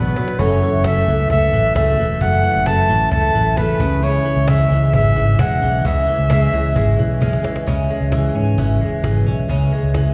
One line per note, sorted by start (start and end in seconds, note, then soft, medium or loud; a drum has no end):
0.00 0.16 B2 medium
0.00 0.39 B2 medium
0.00 0.17 F#3 medium
0.00 0.16 B3 medium
0.00 0.15 D4 medium
0.00 0.40 B4 medium
0.16 0.39 F#3 soft
0.16 0.39 B3 soft
0.16 0.39 D4 soft
0.16 cajon slap medium
0.28 cajon slap medium
0.38 0.58 F#1 loud
0.38 0.61 F#2 medium
0.38 0.62 C#3 medium
0.38 0.62 E3 medium
0.38 0.61 A3 medium
0.38 0.59 C#4 medium
0.38 0.84 C#5 loud
0.38 cajon bass loud
0.61 0.84 E3 soft
0.61 0.84 A3 soft
0.61 0.84 C#4 medium
0.73 1.02 F#1 medium
0.84 1.07 F#2 medium
0.84 1.07 C#3 medium
0.84 1.07 E3 medium
0.84 1.06 A3 medium
0.84 1.05 C#4 medium
0.84 1.27 E5 loud
0.84 cajon bass loud
0.84 cajon slap loud
1.06 1.27 C#2 medium
1.06 1.28 E3 soft
1.06 1.29 A3 soft
1.06 1.29 C#4 medium
1.29 1.49 C#2 medium
1.29 1.52 C#3 medium
1.29 1.52 E3 medium
1.29 1.52 A3 medium
1.29 1.50 C#4 medium
1.29 1.73 E5 loud
1.29 cajon bass loud
1.51 1.72 A1 loud
1.51 1.74 E3 soft
1.51 1.74 A3 soft
1.51 1.74 C#4 medium
1.74 1.95 C#2 loud
1.74 1.97 F#2 medium
1.74 1.98 C#3 medium
1.74 1.98 E3 medium
1.74 1.97 A3 medium
1.74 1.95 C#4 medium
1.74 2.23 E5 loud
1.74 cajon bass loud
1.74 cajon slap loud
1.96 2.17 E1 medium
1.96 2.19 E3 soft
1.96 2.20 A3 soft
1.96 2.20 C#4 medium
2.20 2.40 F#1 medium
2.20 2.43 F#2 medium
2.20 2.43 C#3 medium
2.20 2.43 E3 medium
2.20 2.43 A3 medium
2.20 2.42 C#4 medium
2.20 2.68 F#5 loud
2.20 cajon bass loud
2.43 2.66 E3 soft
2.43 2.66 A3 soft
2.43 2.66 C#4 medium
2.55 2.84 F#1 loud
2.66 2.89 F#2 medium
2.66 2.89 C#3 medium
2.66 2.89 E3 medium
2.66 2.88 A3 medium
2.66 2.87 C#4 medium
2.66 3.11 A5 loud
2.66 cajon bass loud
2.66 cajon slap loud
2.88 3.08 A1 medium
2.88 3.11 E3 soft
2.88 3.12 A3 medium
2.88 3.11 C#4 medium
3.11 3.31 C#2 loud
3.11 3.34 C#3 medium
3.11 3.35 E3 medium
3.11 3.34 A3 medium
3.11 3.33 C#4 medium
3.11 3.59 A5 loud
3.11 cajon bass loud
3.34 3.73 A1 medium
3.34 3.57 E3 soft
3.34 3.58 A3 soft
3.34 3.57 C#4 medium
3.57 3.80 F#2 medium
3.57 3.80 C#3 medium
3.57 3.81 E3 medium
3.57 3.81 A3 medium
3.57 3.79 C#4 medium
3.57 4.05 B4 medium
3.57 cajon bass loud
3.57 cajon slap loud
3.80 4.19 C#2 medium
3.80 4.01 C#3 medium
3.80 4.02 E3 soft
3.80 4.02 G#3 soft
3.80 4.03 C#4 medium
3.80 cajon bass loud
4.02 4.25 C#3 medium
4.02 4.26 E3 medium
4.02 4.25 G#3 medium
4.02 4.24 C#4 medium
4.02 4.50 C#5 loud
4.02 cajon slap soft
4.25 4.47 E3 soft
4.25 4.47 G#3 soft
4.25 4.48 C#4 medium
4.36 4.65 C#2 loud
4.47 4.71 C#3 medium
4.47 4.71 E3 medium
4.47 4.70 G#3 medium
4.47 4.69 C#4 medium
4.47 4.94 E5 loud
4.47 cajon bass loud
4.47 cajon slap loud
4.70 4.90 C#2 medium
4.70 4.92 E3 soft
4.70 4.93 G#3 soft
4.70 4.93 C#4 medium
4.93 5.13 G#1 medium
4.93 5.16 C#3 medium
4.93 5.16 E3 medium
4.93 5.16 G#3 medium
4.93 5.14 C#4 medium
4.93 5.41 E5 loud
4.93 cajon bass loud
5.16 5.35 G#1 medium
5.16 5.39 E3 soft
5.16 5.39 G#3 soft
5.16 5.39 C#4 medium
5.39 5.58 E1 medium
5.39 5.62 C#3 medium
5.39 5.62 E3 medium
5.39 5.62 G#3 medium
5.39 5.61 C#4 medium
5.39 5.88 F#5 loud
5.39 cajon bass loud
5.39 cajon slap loud
5.62 5.81 B1 medium
5.62 5.84 E3 soft
5.62 5.85 G#3 soft
5.62 5.85 C#4 medium
5.85 6.04 C#2 loud
5.85 6.07 C#3 medium
5.85 6.08 E3 medium
5.85 6.08 G#3 medium
5.85 6.06 C#4 medium
5.85 7.22 E5 loud
5.85 cajon bass loud
6.07 6.29 E3 soft
6.07 6.30 G#3 soft
6.07 6.30 C#4 medium
6.18 6.48 C#2 medium
6.30 6.53 C#3 medium
6.30 6.53 E3 medium
6.30 6.52 G#3 medium
6.30 6.51 C#4 medium
6.30 cajon bass loud
6.30 cajon slap loud
6.52 6.72 C#2 medium
6.52 6.74 E3 medium
6.52 6.75 G#3 medium
6.52 6.75 C#4 medium
6.75 6.95 G#1 medium
6.75 6.98 C#3 medium
6.75 6.98 E3 medium
6.75 6.97 G#3 medium
6.75 6.96 C#4 medium
6.75 cajon bass loud
6.97 7.37 B1 loud
6.97 7.20 E3 medium
6.97 7.20 G#3 soft
6.97 7.20 C#4 medium
7.20 7.43 C#3 medium
7.20 7.44 E3 medium
7.20 7.43 G#3 medium
7.20 7.42 C#4 loud
7.20 cajon bass loud
7.20 cajon slap medium
7.33 cajon slap medium
7.43 7.65 E3 medium
7.43 7.66 G#3 medium
7.43 7.66 C#4 medium
7.43 cajon slap medium
7.56 cajon slap medium
7.66 7.86 C#2 medium
7.66 7.89 C#3 medium
7.66 7.89 E3 medium
7.66 7.89 G#3 medium
7.66 7.87 C#4 loud
7.66 cajon bass loud
7.88 8.12 E3 soft
7.88 8.12 G#3 medium
7.88 8.12 C#4 medium
8.01 8.30 C#2 loud
8.12 8.35 C#3 medium
8.12 8.35 E3 medium
8.12 8.35 G#3 medium
8.12 8.33 C#4 medium
8.12 cajon bass loud
8.12 cajon slap loud
8.34 8.54 G#2 medium
8.34 8.57 E3 soft
8.34 8.58 G#3 medium
8.34 8.57 C#4 medium
8.58 8.81 G#1 medium
8.58 8.80 C#3 medium
8.58 8.81 E3 medium
8.58 8.80 G#3 medium
8.58 8.79 C#4 loud
8.58 cajon bass loud
8.80 9.00 E1 medium
8.80 9.03 E3 soft
8.80 9.03 G#3 soft
8.80 9.03 C#4 medium
9.02 9.23 G#1 medium
9.02 9.26 C#3 medium
9.02 9.26 E3 medium
9.02 9.26 G#3 medium
9.02 9.24 C#4 medium
9.02 cajon bass loud
9.02 cajon slap loud
9.26 9.45 B1 medium
9.26 9.48 E3 medium
9.26 9.49 G#3 soft
9.26 9.49 C#4 medium
9.48 9.68 C#2 medium
9.48 9.71 C#3 medium
9.48 9.72 E3 medium
9.48 9.72 G#3 medium
9.48 9.71 C#4 medium
9.48 cajon bass loud
9.72 9.94 E3 soft
9.72 9.95 G#3 medium
9.72 9.94 C#4 medium
9.83 10.12 C#2 medium
9.94 10.14 C#3 medium
9.94 10.14 E3 medium
9.94 10.14 G#3 medium
9.94 10.14 C#4 medium
9.94 cajon bass loud
9.94 cajon slap medium